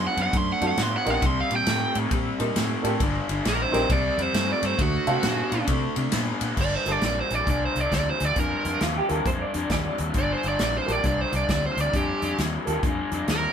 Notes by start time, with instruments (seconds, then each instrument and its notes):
Already playing: overdriven electric guitar D3 B3
0.07 lead electric guitar F#5
0.17 fingered electric bass F#2, overdriven electric guitar D3 B3, ride
0.22 lead electric guitar F#5
0.33 fingered electric bass F#2, overdriven electric guitar D3 A3, lead electric guitar C6, kick, ride
0.52 lead electric guitar F#5
0.61 fingered electric bass F#2, overdriven electric guitar D3 A3, upright piano C4 D4 F4 F#4 A4, ride
0.68 lead electric guitar F#5
0.77 fingered electric bass A2, overdriven electric guitar D3 B3, snare, ride
0.82 lead electric guitar C6
0.97 lead electric guitar F#5
1.05 fingered electric bass A#1, overdriven electric guitar D3 B3, upright piano C4 D4 D#4 G4 A#4, ride
1.11 lead electric guitar F#5
1.22 fingered electric bass C2, overdriven electric guitar C3 G3, kick, ride
1.26 lead electric guitar C6
1.41 lead electric guitar F5
1.51 fingered electric bass A#2, overdriven electric guitar C3 G3, ride
1.55 lead electric guitar G5
1.67 fingered electric bass A2, overdriven electric guitar C3 A3, snare, ride
1.95 fingered electric bass A2, overdriven electric guitar C3 A3, ride
2.11 fingered electric bass A#2, overdriven electric guitar C3 G3, kick, ride
2.39 fingered electric bass A#2, overdriven electric guitar C3 G3, upright piano C4 D4 D#4 G4 A#4, ride
2.56 fingered electric bass A2, overdriven electric guitar C3 A3, snare, ride
2.82 fingered electric bass A2, overdriven electric guitar C3 A3, upright piano A#3 D4 F4 G4 A4, ride
3.00 fingered electric bass G1, overdriven electric guitar G2 D3, kick, ride
3.29 fingered electric bass G1, overdriven electric guitar G2 D3, ride
3.45 fingered electric bass A#1, overdriven electric guitar G2 E3, lead electric guitar A#4, snare, ride
3.63 lead electric guitar C5
3.72 fingered electric bass A#1, overdriven electric guitar G2 E3, upright piano C4 D4 D#4 G4 A#4, snare, ride
3.90 fingered electric bass C2, overdriven electric guitar C3 G3, lead electric guitar D5, kick, ride
4.18 fingered electric bass F2, overdriven electric guitar C3 G3, ride
4.22 lead electric guitar C5
4.33 fingered electric bass G2, overdriven electric guitar C3 A3, snare, ride
4.53 lead electric guitar D5
4.62 fingered electric bass G2, overdriven electric guitar C3 A3, lead electric guitar C5, ride
4.78 fingered electric bass D2, overdriven electric guitar D3 A3, lead electric guitar F#4, kick, ride
5.06 fingered electric bass C3, overdriven electric guitar D3 A3, upright piano C4 D4 F#4 A4 F5, ride
5.23 fingered electric bass A#2, overdriven electric guitar D3 B3, snare, ride
5.52 fingered electric bass A#2, overdriven electric guitar D3 B3, ride
5.67 fingered electric bass C3, overdriven electric guitar D3 A3, kick, ride
5.96 fingered electric bass C3, overdriven electric guitar D3 A3, ride
6.12 fingered electric bass A#2, overdriven electric guitar D3 B3, snare, ride
6.41 fingered electric bass A#2, overdriven electric guitar D3 B3, ride
6.57 fingered electric bass G1, overdriven electric guitar G2 D3, lead electric guitar D5, kick, crash
6.76 lead electric guitar C5
6.85 fingered electric bass G1, overdriven electric guitar G2 D3, upright piano A#3 F4 G4 A4, closed hi-hat
6.91 lead electric guitar D5
7.02 fingered electric bass A#1, overdriven electric guitar G2 E3, snare, closed hi-hat
7.06 lead electric guitar D5
7.20 lead electric guitar C5
7.30 fingered electric bass A#1, overdriven electric guitar G2 E3, closed hi-hat
7.34 lead electric guitar D5
7.47 fingered electric bass C2, overdriven electric guitar G2 D3, lead electric guitar D5, kick, closed hi-hat
7.65 lead electric guitar C5
7.75 fingered electric bass C2, overdriven electric guitar G2 D3, closed hi-hat
7.80 lead electric guitar D5
7.92 fingered electric bass D2, overdriven electric guitar G2 E3, lead electric guitar D5, kick, snare, closed hi-hat
8.10 lead electric guitar C5
8.20 fingered electric bass D2, overdriven electric guitar G2 E3, closed hi-hat
8.25 lead electric guitar D5
8.36 fingered electric bass F2, overdriven electric guitar G2 D3, lead electric guitar A#4, kick, closed hi-hat
8.65 fingered electric bass F2, overdriven electric guitar G2 D3, closed hi-hat
8.81 fingered electric bass D#2, overdriven electric guitar G2 E3, clean electric guitar F4, snare, closed hi-hat
8.97 clean electric guitar G4
9.09 fingered electric bass D#2, overdriven electric guitar G2 E3, upright piano A#3 F4 G4 A4, clean electric guitar A#4, closed hi-hat
9.25 fingered electric bass F2, overdriven electric guitar G2 D3, clean electric guitar C5, kick, closed hi-hat
9.41 clean electric guitar D5
9.54 fingered electric bass F2, overdriven electric guitar G2 D3, closed hi-hat
9.70 fingered electric bass D#2, overdriven electric guitar G2 E3, clean electric guitar D5, kick, snare, closed hi-hat
9.98 fingered electric bass D#2, overdriven electric guitar G2 E3, closed hi-hat
10.14 fingered electric bass G1, overdriven electric guitar G2 D3, kick, closed hi-hat
10.18 lead electric guitar D5
10.33 lead electric guitar C5
10.43 fingered electric bass G1, overdriven electric guitar G2 D3, closed hi-hat
10.48 lead electric guitar D5
10.59 fingered electric bass A#1, overdriven electric guitar G2 E3, lead electric guitar D5, snare, closed hi-hat
10.78 lead electric guitar C5
10.86 fingered electric bass A#1, overdriven electric guitar G2 E3, upright piano A#3 F4 G4 A4, closed hi-hat
10.92 lead electric guitar D5
11.03 fingered electric bass C2, overdriven electric guitar G2 D3, lead electric guitar D5, kick, closed hi-hat
11.21 lead electric guitar C5
11.32 fingered electric bass C2, overdriven electric guitar G2 D3, closed hi-hat
11.36 lead electric guitar D5
11.48 fingered electric bass D2, overdriven electric guitar G2 E3, lead electric guitar D5, kick, snare, closed hi-hat
11.66 lead electric guitar C5
11.77 fingered electric bass D2, overdriven electric guitar G2 E3, closed hi-hat
11.81 lead electric guitar D5
11.93 fingered electric bass F2, overdriven electric guitar G2 D3, lead electric guitar G4, kick, closed hi-hat
12.22 fingered electric bass F2, overdriven electric guitar G2 D3, closed hi-hat
12.38 fingered electric bass D#2, overdriven electric guitar G2 E3, snare, closed hi-hat
12.65 fingered electric bass D#2, overdriven electric guitar G2 E3, upright piano A#3 F4 G4 A4, closed hi-hat
12.83 fingered electric bass F2, overdriven electric guitar G2 D3, kick, closed hi-hat
13.12 fingered electric bass F2, overdriven electric guitar G2 D3, closed hi-hat
13.27 fingered electric bass D#2, overdriven electric guitar G2 E3, lead electric guitar A#4, snare, closed hi-hat